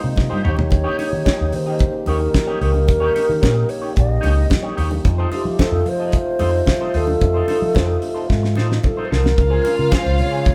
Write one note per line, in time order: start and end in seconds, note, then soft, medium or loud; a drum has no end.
0.00 0.40 A#2 medium
0.00 0.40 G#3 medium
0.00 0.11 D#4 medium
0.00 5.00 D#4 medium
0.00 0.42 F4 medium
0.00 muted clean electric guitar stroke soft
0.04 0.14 C3 medium
0.16 0.28 C3 medium
0.16 muted clean electric guitar stroke soft
0.16 kick medium
0.16 snare soft
0.16 high conga medium
0.30 0.42 G2 medium
0.30 0.42 D#4 medium
0.30 0.43 G4 medium
0.30 0.44 C5 medium
0.43 0.85 D#2 loud
0.43 5.01 C#3 medium
0.43 5.01 A#3 medium
0.43 0.60 D#4 medium
0.43 0.58 G4 medium
0.43 5.01 G4 medium
0.43 0.57 C#5 medium
0.43 1.57 C#5 loud
0.43 mid tom medium
0.56 muted clean electric guitar stroke soft
0.56 floor tom medium
0.56 high conga medium
0.70 muted clean electric guitar stroke soft
0.70 kick loud
0.70 closed hi-hat medium
0.70 muted conga medium
0.84 0.97 D#4 medium
0.84 0.98 G4 medium
0.84 0.98 C#5 medium
0.98 1.15 D#4 medium
0.98 1.11 G4 medium
0.98 1.10 C#5 medium
0.98 open hi-hat medium
0.98 muted conga medium
1.11 1.23 D#3 medium
1.11 muted clean electric guitar stroke soft
1.25 1.46 D#4 medium
1.25 1.38 G4 medium
1.25 1.37 C#5 medium
1.25 kick loud
1.25 snare loud
1.25 closed hi-hat soft
1.25 high conga medium
1.39 1.50 D#2 medium
1.39 muted clean electric guitar stroke medium
1.52 1.83 D#3 loud
1.52 2.09 C5 medium
1.52 muted clean electric guitar stroke soft
1.52 open hi-hat medium
1.52 muted conga soft
1.66 1.83 D#4 medium
1.66 1.83 G4 medium
1.66 1.83 D#5 medium
1.79 kick loud
1.79 closed hi-hat medium
1.93 muted clean electric guitar stroke soft
2.06 2.27 D#2 medium
2.06 2.28 D#4 medium
2.06 2.20 G4 medium
2.06 2.61 A#4 medium
2.06 2.19 C#5 medium
2.06 open hi-hat medium
2.06 muted conga medium
2.20 muted clean electric guitar stroke soft
2.33 muted clean electric guitar stroke soft
2.33 kick loud
2.33 snare loud
2.33 closed hi-hat medium
2.33 high conga medium
2.47 2.60 D#4 medium
2.47 2.61 G4 medium
2.47 2.61 C#5 medium
2.61 2.89 C#2 medium
2.61 2.78 D#4 medium
2.61 2.74 G4 medium
2.61 3.71 A#4 loud
2.61 2.73 C#5 medium
2.61 open hi-hat medium
2.74 muted clean electric guitar stroke soft
2.74 high conga medium
2.87 3.09 D#2 medium
2.87 muted clean electric guitar stroke soft
2.87 kick loud
2.87 closed hi-hat medium
2.87 muted conga medium
3.00 3.13 D#4 medium
3.00 3.14 G4 medium
3.00 3.14 C#5 medium
3.14 3.31 D#4 medium
3.14 3.28 G4 medium
3.14 3.27 C#5 medium
3.14 open hi-hat medium
3.14 muted conga medium
3.28 3.39 D#3 medium
3.28 muted clean electric guitar stroke soft
3.41 3.63 A#2 medium
3.41 3.63 D#4 medium
3.41 3.55 G4 medium
3.41 3.54 C#5 medium
3.41 kick loud
3.41 snare loud
3.41 closed hi-hat soft
3.41 high conga medium
3.55 muted clean electric guitar stroke soft
3.69 3.97 C#5 medium
3.69 muted clean electric guitar stroke soft
3.69 open hi-hat medium
3.82 3.94 D#4 soft
3.82 3.94 G4 medium
3.82 3.95 C#5 medium
3.95 4.17 A#1 loud
3.95 4.75 D#5 loud
3.95 muted clean electric guitar stroke soft
3.95 kick loud
3.95 closed hi-hat medium
4.09 muted clean electric guitar stroke soft
4.21 4.44 C#2 medium
4.21 4.43 D#4 medium
4.21 4.36 G4 medium
4.21 4.34 C#5 medium
4.21 open hi-hat medium
4.21 muted conga medium
4.36 muted clean electric guitar stroke medium
4.49 muted clean electric guitar stroke soft
4.49 kick loud
4.49 snare loud
4.49 closed hi-hat medium
4.49 high conga medium
4.63 4.76 D#4 medium
4.63 4.76 G4 medium
4.63 4.77 C#5 medium
4.77 4.98 D#2 medium
4.77 4.94 D#4 medium
4.77 4.91 G4 medium
4.77 4.90 C#5 medium
4.77 open hi-hat medium
4.91 muted clean electric guitar stroke medium
4.91 high conga medium
5.04 5.25 F2 loud
5.04 9.21 C3 medium
5.04 9.21 A3 medium
5.04 9.21 D#4 medium
5.04 9.21 F4 medium
5.04 muted clean electric guitar stroke soft
5.04 kick loud
5.04 closed hi-hat medium
5.04 muted conga soft
5.18 5.30 D#4 medium
5.18 5.31 A4 medium
5.18 5.32 C5 medium
5.32 5.48 D#4 medium
5.32 5.62 G4 medium
5.32 5.44 A4 medium
5.32 5.43 C5 medium
5.32 open hi-hat medium
5.32 muted conga medium
5.45 5.55 F3 medium
5.45 muted clean electric guitar stroke soft
5.58 5.80 D#4 medium
5.58 5.72 A4 medium
5.58 5.90 A4 loud
5.58 5.71 C5 medium
5.58 kick loud
5.58 snare loud
5.58 closed hi-hat medium
5.58 high conga medium
5.72 5.82 F2 loud
5.72 muted clean electric guitar stroke soft
5.86 6.16 F3 medium
5.86 6.15 C5 medium
5.86 muted clean electric guitar stroke soft
5.86 open hi-hat medium
5.86 muted conga soft
5.99 6.16 D#4 medium
5.99 6.16 A4 medium
5.99 6.16 D#5 medium
6.12 6.98 C5 loud
6.12 kick loud
6.12 closed hi-hat medium
6.27 muted clean electric guitar stroke soft
6.39 6.60 F2 medium
6.39 6.61 D#4 medium
6.39 6.52 A4 medium
6.39 6.51 C5 medium
6.39 open hi-hat medium
6.39 muted conga medium
6.52 muted clean electric guitar stroke soft
6.66 muted clean electric guitar stroke soft
6.66 kick loud
6.66 snare loud
6.66 closed hi-hat medium
6.66 high conga medium
6.81 6.93 D#4 medium
6.81 6.94 A4 medium
6.81 6.94 C5 medium
6.94 7.15 D#2 medium
6.94 7.11 D#4 medium
6.94 7.07 A4 medium
6.94 8.58 A4 loud
6.94 7.06 C5 medium
6.94 open hi-hat medium
7.07 muted clean electric guitar stroke soft
7.07 high conga medium
7.21 7.41 F2 loud
7.21 muted clean electric guitar stroke soft
7.21 kick loud
7.21 closed hi-hat medium
7.21 muted conga soft
7.34 7.47 D#4 medium
7.34 7.47 A4 medium
7.34 7.48 C5 medium
7.48 7.64 D#4 medium
7.48 7.61 A4 medium
7.48 7.60 C5 medium
7.48 open hi-hat medium
7.48 muted conga medium
7.61 7.72 F3 medium
7.61 muted clean electric guitar stroke soft
7.75 7.96 F2 medium
7.75 7.96 D#4 medium
7.75 7.88 A4 medium
7.75 7.87 C5 medium
7.75 kick loud
7.75 snare loud
7.75 closed hi-hat medium
7.75 high conga medium
7.88 muted clean electric guitar stroke soft
8.02 muted clean electric guitar stroke soft
8.02 open hi-hat medium
8.02 muted conga soft
8.14 8.27 D#4 soft
8.14 8.28 A4 medium
8.14 8.28 C5 medium
8.28 8.58 G#2 medium
8.28 muted clean electric guitar stroke soft
8.28 kick loud
8.28 snare medium
8.43 muted clean electric guitar stroke soft
8.43 snare medium
8.55 8.77 A2 medium
8.55 8.78 D#4 medium
8.55 8.69 A4 medium
8.55 8.69 C5 medium
8.55 snare medium
8.55 muted conga medium
8.70 muted clean electric guitar stroke soft
8.70 snare medium
8.83 9.07 A4 medium
8.83 muted clean electric guitar stroke soft
8.83 kick loud
8.83 high conga medium
8.97 9.09 D#4 medium
8.97 9.10 A4 medium
8.97 9.11 C5 medium
9.05 9.13 C5 medium
9.10 9.32 C2 medium
9.10 9.27 D#4 medium
9.10 9.24 A4 medium
9.10 9.93 A#4 medium
9.10 9.23 C5 medium
9.10 snare medium
9.24 muted clean electric guitar stroke soft
9.24 snare medium
9.24 high conga medium
9.37 9.58 C#2 medium
9.37 10.55 C#3 medium
9.37 10.55 G#3 medium
9.37 10.55 C#4 medium
9.37 10.55 F4 medium
9.37 10.55 F5 loud
9.37 muted clean electric guitar stroke soft
9.37 kick loud
9.37 closed hi-hat medium
9.37 muted conga soft
9.50 9.63 F4 medium
9.50 9.63 G#4 medium
9.50 9.64 C5 medium
9.64 9.81 F4 medium
9.64 9.77 G#4 medium
9.64 9.77 C5 medium
9.64 open hi-hat medium
9.64 muted conga medium
9.78 9.89 C#3 medium
9.78 muted clean electric guitar stroke soft
9.92 10.13 F4 medium
9.92 10.05 G#4 medium
9.92 10.21 C5 loud
9.92 10.04 C5 medium
9.92 kick loud
9.92 snare loud
9.92 clap loud
9.92 closed hi-hat soft
9.92 high conga medium
10.05 10.21 C#2 medium
10.05 muted clean electric guitar stroke soft
10.18 10.50 C#3 medium
10.18 10.55 C#5 loud
10.18 muted clean electric guitar stroke soft
10.18 open hi-hat medium
10.18 muted conga soft
10.31 10.49 F4 medium
10.31 10.49 G#4 medium
10.31 10.48 C#5 medium
10.45 kick loud
10.45 closed hi-hat medium
10.45 low conga medium